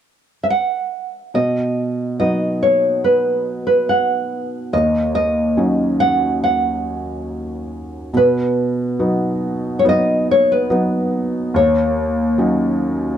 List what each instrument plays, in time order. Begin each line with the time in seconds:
0.43 nylon-string guitar E5
0.50 nylon-string guitar F#5
1.34 felt piano B2, nylon-string guitar D#5
2.19 felt piano F#3 B3 D#4, nylon-string guitar D#5
2.63 nylon-string guitar C#5
3.04 nylon-string guitar B4
3.67 nylon-string guitar B4
3.89 nylon-string guitar F#5
4.73 felt piano D#2, nylon-string guitar D#5
5.15 nylon-string guitar D#5
5.57 felt piano F#3 C#4 D#4
6.00 nylon-string guitar F#5
6.44 nylon-string guitar F#5
8.13 felt piano B2, nylon-string guitar B4
8.99 felt piano F#3 B3 D#4
9.79 nylon-string guitar C#5
9.84 felt piano F#3 B3 D#4
9.89 nylon-string guitar D#5
10.31 nylon-string guitar C#5
10.52 nylon-string guitar B4
10.70 felt piano F#3 B3 D#4
11.54 felt piano D#2, nylon-string guitar C#5
12.38 felt piano F#3 C#4 D#4